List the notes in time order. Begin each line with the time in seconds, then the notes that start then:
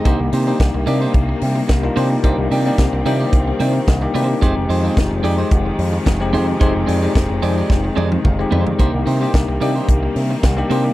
0.05 C2 C3 D#3 G3 A#3 D4 D#4 G4 C5, kick, closed hi-hat
0.20 C2, muted clean electric guitar stroke
0.33 C3 A#3 D#4 G4 C5, open hi-hat
0.47 A#3 D4 D#4 G4 C5
0.59 C2, muted clean electric guitar stroke, kick, snare, closed hi-hat
0.74 C2, muted clean electric guitar stroke
0.86 C3 A#3 D4 D#4 G4 D5, open hi-hat
1.01 A#3 D#4 G4 C5
1.14 C2, muted clean electric guitar stroke, kick, closed hi-hat
1.29 muted clean electric guitar stroke
1.41 C3, open hi-hat
1.55 muted clean electric guitar stroke
1.68 C2, muted clean electric guitar stroke, kick, snare, closed hi-hat
1.83 A#3 D4 D#4 F4, muted clean electric guitar stroke
1.96 C3 A#3 D4 D#4 G4 C5, open hi-hat
2.10 muted clean electric guitar stroke
2.23 C2 A#3 C4 D4 D#4 G4 C5, kick, closed hi-hat
2.38 C2, muted clean electric guitar stroke
2.51 C3 A#3 D#4 G4 D5, open hi-hat
2.66 A#3 D4 D#4 G4 D5
2.78 C2, muted clean electric guitar stroke, kick, snare, closed hi-hat
2.93 C2, muted clean electric guitar stroke
3.05 C3 A#3 D4 D#4 G4 D5, open hi-hat
3.20 A#3 D#4 G4 D5
3.33 C2, kick, closed hi-hat
3.48 muted clean electric guitar stroke
3.60 C3 A#3 D#4 G4 C5 D5, open hi-hat
3.75 muted clean electric guitar stroke
3.88 C2 D#5, muted clean electric guitar stroke, kick, snare, closed hi-hat
4.01 A#3 D4 D#4 G4, muted clean electric guitar stroke
4.14 C3 A#3 D4 D#4 G4 C5, open hi-hat
4.28 muted clean electric guitar stroke
4.41 F1 C3 F3 G#3 C4 D#4 G4 G#4 C5, kick, closed hi-hat
4.56 F1, muted clean electric guitar stroke
4.69 F2 C4 D#4 G#4 C5, open hi-hat
4.83 G#3 C4 D#4 F4 G#4 C5
4.96 F1, muted clean electric guitar stroke, kick, snare, closed hi-hat
5.11 F1, muted clean electric guitar stroke
5.23 F2 G#3 C4 D#4 G4 G#4 D5, open hi-hat
5.38 C4 D#4 G#4 C5
5.51 F1, kick, closed hi-hat
5.66 muted clean electric guitar stroke
5.79 F2, open hi-hat
5.93 muted clean electric guitar stroke
6.06 F1, muted clean electric guitar stroke, kick, snare, closed hi-hat
6.20 G#3 C4 D#4 G4, muted clean electric guitar stroke
6.33 F2 G#3 C4 D#4 G4 G#4 C5, open hi-hat
6.48 muted clean electric guitar stroke
6.60 F1 G#3 C4 D#4 G4 G#4 C5, kick, closed hi-hat
6.75 F1, muted clean electric guitar stroke
6.86 F2 C4 D#4 G#4 D5, open hi-hat
7.01 G#3 C4 D#4 G4 G#4 D5
7.15 F1, muted clean electric guitar stroke, kick, snare, closed hi-hat
7.29 F1, muted clean electric guitar stroke
7.42 F2 G#3 C4 D#4 G4 G#4 D5, open hi-hat
7.57 C4 D#4 G#4 D5
7.70 F1, kick, snare
7.84 muted clean electric guitar stroke
7.96 F2 C4 D#4 G#4 D5, high tom
8.11 muted clean electric guitar stroke, high tom
8.24 F1 F5, muted clean electric guitar stroke, kick, mid tom
8.39 G#3 C4 D#4 G4, muted clean electric guitar stroke
8.51 F2 G#3 C4 D#4 G4 G#4 C5 D5, floor tom
8.66 muted clean electric guitar stroke, floor tom
8.79 C2 C3 G3 A#3 D4 D#4 G4 C5, kick, closed hi-hat
8.93 C2, muted clean electric guitar stroke
9.06 C3 A#3 D#4 G4 C5, open hi-hat
9.21 A#3 D4 D#4 G4 C5
9.34 C2, kick, snare, closed hi-hat
9.48 C2, muted clean electric guitar stroke
9.61 C3 A#3 D4 D#4 G4 D5, open hi-hat
9.75 A#3 D#4 G4 C5
9.88 C2, muted clean electric guitar stroke, kick, closed hi-hat
10.03 muted clean electric guitar stroke
10.16 C3, open hi-hat
10.31 muted clean electric guitar stroke
10.43 C2, muted clean electric guitar stroke, kick, snare, closed hi-hat
10.57 A#3 D4 D#4 G4, muted clean electric guitar stroke
10.70 C3 A#3 D4 D#4 G4 C5, open hi-hat
10.85 muted clean electric guitar stroke